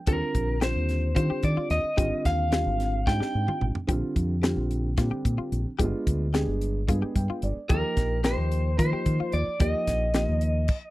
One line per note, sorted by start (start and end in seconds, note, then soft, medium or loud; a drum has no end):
0.07 0.20 D#2 medium
0.07 0.52 D3 medium
0.07 0.52 G3 medium
0.07 0.52 C4 medium
0.07 0.52 F4 medium
0.07 0.30 G4 medium
0.07 0.59 A#4 medium
0.07 kick loud
0.07 closed hi-hat medium
0.35 0.73 A#1 medium
0.35 kick medium
0.35 closed hi-hat medium
0.61 1.06 D3 medium
0.61 1.06 G3 medium
0.61 1.07 C4 soft
0.61 1.07 F4 medium
0.61 0.84 G4 medium
0.61 1.15 C5 medium
0.61 snare medium
0.61 closed hi-hat medium
0.76 1.14 D#2 medium
0.89 snare soft
0.89 closed hi-hat medium
1.14 1.83 D3 medium
1.14 1.29 D#3 medium
1.14 1.83 G3 medium
1.14 1.82 C4 medium
1.14 1.83 F4 medium
1.14 1.28 F4 medium
1.14 1.44 C5 medium
1.14 kick medium
1.14 closed hi-hat medium
1.30 1.52 G4 medium
1.30 muted fingered electric bass stroke soft
1.43 1.56 D#3 medium
1.43 1.70 D5 medium
1.43 kick medium
1.43 closed hi-hat medium
1.57 1.79 F4 medium
1.57 muted fingered electric bass stroke soft
1.70 1.83 D#2 medium
1.70 2.22 D#5 medium
1.70 snare soft
1.70 closed hi-hat soft
1.83 muted fingered electric bass stroke soft
1.97 2.11 G#1 medium
1.97 2.42 D3 medium
1.97 2.42 G3 medium
1.97 2.42 C4 medium
1.97 2.42 F4 medium
1.97 2.20 G4 medium
1.97 kick loud
1.97 closed hi-hat medium
2.25 2.63 D#2 medium
2.25 3.10 F5 medium
2.25 kick medium
2.25 snare soft
2.25 closed hi-hat soft
2.51 2.97 D3 medium
2.51 2.97 G3 medium
2.51 2.97 C4 medium
2.51 2.97 F4 medium
2.51 2.75 G4 medium
2.51 snare medium
2.51 closed hi-hat medium
2.66 3.04 G#1 medium
2.80 snare soft
2.80 closed hi-hat medium
3.07 3.20 G#2 medium
3.07 3.74 G3 medium
3.07 3.74 C4 soft
3.07 3.74 D4 medium
3.07 3.74 D#4 medium
3.07 3.18 F4 medium
3.07 3.64 G5 medium
3.07 kick medium
3.07 snare soft
3.20 3.43 G4 medium
3.20 muted fingered electric bass stroke soft
3.20 snare medium
3.35 3.47 G#2 medium
3.48 3.70 F4 medium
3.48 muted fingered electric bass stroke soft
3.48 mid tom medium
3.61 3.74 G#1 medium
3.61 mid tom medium
3.75 floor tom medium
3.87 4.01 A#1 medium
3.87 4.33 D3 medium
3.87 4.33 G3 medium
3.87 4.33 C4 medium
3.87 4.33 F4 medium
3.87 4.11 G4 medium
3.87 kick loud
3.87 closed hi-hat medium
4.16 4.54 F2 medium
4.16 kick medium
4.16 closed hi-hat medium
4.42 4.87 D3 medium
4.42 4.87 G3 medium
4.42 4.88 C4 medium
4.42 4.88 F4 medium
4.42 4.65 G4 medium
4.42 snare medium
4.42 closed hi-hat medium
4.57 4.95 A#1 medium
4.71 closed hi-hat medium
4.97 5.10 A#2 medium
4.97 5.65 D3 medium
4.97 5.65 G3 medium
4.97 5.65 C4 medium
4.97 5.65 D4 medium
4.97 5.09 F4 medium
4.97 kick medium
4.97 snare soft
4.97 closed hi-hat medium
5.11 5.33 G4 medium
5.11 muted fingered electric bass stroke soft
5.25 5.38 A#2 medium
5.25 kick medium
5.25 closed hi-hat medium
5.38 5.60 F4 medium
5.38 muted fingered electric bass stroke soft
5.52 5.65 A#1 medium
5.52 closed hi-hat soft
5.67 muted fingered electric bass stroke soft
5.79 5.92 G1 medium
5.79 6.24 G#3 medium
5.79 6.24 B3 medium
5.79 6.24 D4 medium
5.79 6.24 F4 loud
5.79 6.01 G4 medium
5.79 kick medium
5.79 closed hi-hat medium
6.07 6.45 D2 medium
6.07 kick medium
6.07 closed hi-hat medium
6.33 6.78 G#3 medium
6.33 6.78 B3 medium
6.33 6.78 D4 medium
6.33 6.56 G4 medium
6.33 6.78 G#4 medium
6.33 snare medium
6.33 closed hi-hat medium
6.48 6.85 G1 medium
6.61 closed hi-hat medium
6.88 7.01 G2 medium
6.88 7.55 G#3 medium
6.88 7.55 B3 medium
6.88 7.55 D4 medium
6.88 7.00 F4 medium
6.88 7.55 G#4 medium
6.88 kick medium
6.88 closed hi-hat medium
7.02 7.24 G4 medium
7.02 muted fingered electric bass stroke soft
7.16 7.28 G2 medium
7.16 7.41 G5 medium
7.16 kick medium
7.16 closed hi-hat soft
7.29 7.52 F4 medium
7.29 muted fingered electric bass stroke soft
7.42 7.55 G1 medium
7.42 7.68 D5 medium
7.42 closed hi-hat medium
7.69 7.82 D#2 medium
7.69 8.15 F3 medium
7.69 8.14 A#3 medium
7.69 8.15 D#4 medium
7.69 7.92 G4 medium
7.69 8.15 G4 medium
7.69 8.20 A#4 medium
7.69 kick loud
7.69 closed hi-hat medium
7.97 8.35 A#1 medium
7.97 kick medium
7.97 snare soft
7.97 closed hi-hat medium
8.24 8.69 F3 medium
8.24 8.69 A#3 soft
8.24 8.69 D#4 medium
8.24 8.46 G4 medium
8.24 8.69 G4 medium
8.24 8.78 C5 medium
8.24 snare medium
8.24 closed hi-hat medium
8.38 8.76 D#2 medium
8.52 closed hi-hat medium
8.78 8.91 D#3 medium
8.78 9.45 F3 medium
8.78 9.45 A#3 medium
8.78 9.45 D#4 medium
8.78 9.45 F4 medium
8.78 8.90 F4 medium
8.78 9.35 C5 medium
8.78 kick medium
8.78 closed hi-hat medium
8.93 9.15 G4 medium
8.93 muted fingered electric bass stroke soft
9.06 9.19 D#3 medium
9.06 kick medium
9.06 closed hi-hat medium
9.20 9.42 F4 medium
9.20 muted fingered electric bass stroke soft
9.32 9.46 D#2 medium
9.32 9.59 D5 medium
9.32 closed hi-hat medium
9.48 muted fingered electric bass stroke soft
9.59 9.73 D#2 medium
9.59 10.04 F3 medium
9.59 10.04 A#3 medium
9.59 10.04 D#4 medium
9.59 10.05 G4 medium
9.59 9.83 G4 medium
9.59 10.90 D#5 medium
9.59 kick loud
9.59 closed hi-hat medium
9.87 10.25 A#1 medium
9.87 kick medium
9.87 snare soft
9.87 closed hi-hat medium
10.14 10.59 F3 medium
10.14 10.59 A#3 medium
10.14 10.59 D#4 medium
10.14 10.59 F4 medium
10.14 10.37 G4 medium
10.14 snare medium
10.14 closed hi-hat medium
10.29 10.66 D#2 medium
10.41 closed hi-hat medium
10.68 kick medium
10.68 crash medium